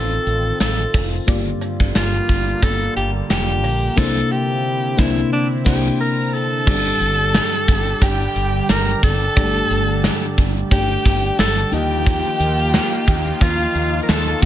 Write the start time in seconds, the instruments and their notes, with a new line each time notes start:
Already playing: fretless electric bass A1, fm electric piano A2 C4 F4 A4 D#5, analog synth pad D#3 C4 F4 A4, alto saxophone A4
0.27 fretless electric bass A1, closed hi-hat
0.60 fretless electric bass A1, alto saxophone A4, snare, closed hi-hat, cowbell
0.94 fretless electric bass F1, kick, open hi-hat, cowbell
1.27 fretless electric bass G1, fm electric piano G2 A#3 F4 G4 D5, analog synth pad D3 G3 A#3, kick, closed hi-hat, cowbell
1.61 closed hi-hat, cowbell
1.80 fretless electric bass G1, kick
1.95 fretless electric bass G1, alto saxophone F4, snare, closed hi-hat, cowbell
2.29 fretless electric bass G1, kick, closed hi-hat
2.62 fretless electric bass G1, alto saxophone A4, kick, closed hi-hat, cowbell
2.96 fretless electric bass G1, alto saxophone G4, closed hi-hat
3.30 fretless electric bass F1, alto saxophone G4, snare, closed hi-hat, cowbell
3.64 fretless electric bass A#1, open hi-hat, cowbell
3.96 fretless electric bass C2, fm electric piano C3 A#3 D4 E4 C5, analog synth pad C4 E4, alto saxophone A4, kick, snare, crash
4.32 alto saxophone G4
4.97 fretless electric bass C2, fm electric piano C3 A#3 D4 E4 C5, alto saxophone E4, kick, snare
5.33 alto saxophone D4
5.65 fretless electric bass C2, fm electric piano C3 A#3 D4 E4 C5, alto saxophone G4, kick, snare, crash
6.00 alto saxophone A#4, violin section A#5
6.34 alto saxophone A4, violin section A5
6.66 fretless electric bass G1, overdriven electric guitar G2 D3 G3, fm electric piano G2 G3 D4 G4 D5, analog synth pad D3 G3 G4, kick, crash, cowbell
7.00 fretless electric bass G1, overdriven electric guitar D3 G3, closed hi-hat
7.34 snare, closed hi-hat, tambourine, cowbell
7.68 fretless electric bass G1, kick, closed hi-hat
8.01 fretless electric bass G1, overdriven electric guitar G2 D3 G3, alto saxophone G4, violin section G5, kick, closed hi-hat, cowbell
8.36 fretless electric bass G1, closed hi-hat
8.69 fretless electric bass G1, alto saxophone A#4, violin section A#5, snare, closed hi-hat, tambourine, cowbell
9.03 fretless electric bass G1, alto saxophone A4, violin section A5, kick, closed hi-hat
9.36 fretless electric bass G1, overdriven electric guitar G2 D3 G3, fm electric piano G2 G3 D4 G4 D5, kick, closed hi-hat, cowbell
9.42 fm electric piano A3
9.69 fretless electric bass G1, overdriven electric guitar D3 G3, closed hi-hat
10.04 snare, closed hi-hat, tambourine, cowbell
10.38 fretless electric bass G1, kick, closed hi-hat
10.71 fretless electric bass G1, overdriven electric guitar G2 D3 G3, fm electric piano A3 D4 G4 D5, alto saxophone G4, violin section G5, kick, closed hi-hat, cowbell
11.05 fretless electric bass G1, kick, closed hi-hat
11.39 fretless electric bass G1, alto saxophone A4, violin section A5, snare, closed hi-hat, tambourine, cowbell
11.71 fretless electric bass D#2, analog synth pad D#3 F3 A#3 F4, fm electric piano D#3 A#3 D#4 F4 D#5, overdriven electric guitar A#3 D#4, alto saxophone G4, violin section G5, closed hi-hat
11.75 overdriven electric guitar D#3
12.06 kick, closed hi-hat, cowbell
12.40 fretless electric bass D#2, closed hi-hat
12.59 closed hi-hat
12.74 snare, closed hi-hat, tambourine, cowbell
13.08 fretless electric bass D#2, kick, closed hi-hat
13.41 fretless electric bass D#2, overdriven electric guitar D#3 A#3 D#4, alto saxophone F4, violin section F5, kick, closed hi-hat, cowbell
13.75 fretless electric bass D#2, closed hi-hat
14.02 alto saxophone A#4, violin section A#5
14.08 fretless electric bass D#2, overdriven electric guitar D#3 A#3 D#4, alto saxophone A4, violin section A5, snare, closed hi-hat, tambourine, cowbell
14.42 fm electric piano A#3 D#4, analog synth pad A#3, violin section G5